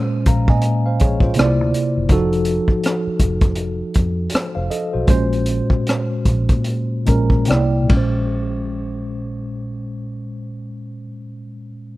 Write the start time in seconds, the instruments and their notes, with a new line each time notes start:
Already playing: tine electric piano A#2 G#3 C#4 C5
0.26 fingered electric bass A#1, tine electric piano F5 A#5, kick, closed hi-hat
0.48 fingered electric bass A#2, tine electric piano D#5 G#5, kick
0.62 closed hi-hat
0.86 tine electric piano C5 F5
1.00 fingered electric bass A#1, tine electric piano G#4 C#5, kick, closed hi-hat
1.20 tine electric piano F4 C5, kick
1.34 tine electric piano C3 A#3 E4, closed hi-hat
1.39 fingered electric bass C2, tine electric piano D5, cross-stick
1.61 fingered electric bass D2
1.74 closed hi-hat
1.97 fingered electric bass F#1
2.09 fingered electric bass F1, tine electric piano F3 D#4 F#4 A4, kick, closed hi-hat
2.33 closed hi-hat
2.45 closed hi-hat
2.68 muted fingered electric bass stroke, kick
2.84 cross-stick, closed hi-hat
3.07 muted fingered electric bass stroke
3.20 fingered electric bass F1, kick, closed hi-hat
3.41 kick, closed hi-hat
3.55 closed hi-hat
3.94 fingered electric bass F2, kick, closed hi-hat
4.30 closed hi-hat
4.34 muted fingered electric bass stroke, cross-stick
4.55 fingered electric bass F1, tine electric piano C5 F5
4.70 tine electric piano A4 D#5, closed hi-hat
4.93 fingered electric bass B1, tine electric piano F#4 C5
5.07 fingered electric bass A#1, tine electric piano A#2 G#3 C#4 C5, kick, closed hi-hat
5.33 closed hi-hat
5.46 closed hi-hat
5.70 muted fingered electric bass stroke, kick
5.87 cross-stick, closed hi-hat
6.25 fingered electric bass A#1, kick, closed hi-hat
6.49 fingered electric bass A#2, kick, closed hi-hat
6.64 closed hi-hat
7.05 fingered electric bass A#1, tine electric piano A#2 G#3 C#4 A#4 A#5, kick, closed hi-hat
7.30 kick
7.45 tine electric piano C3 A#3 E4 G5, closed hi-hat
7.50 fingered electric bass C2, tine electric piano D5, cross-stick
7.83 tine electric piano A#2
7.88 fingered electric bass A#1, tine electric piano G#3, kick, ride
7.92 tine electric piano C#4
7.97 tine electric piano C5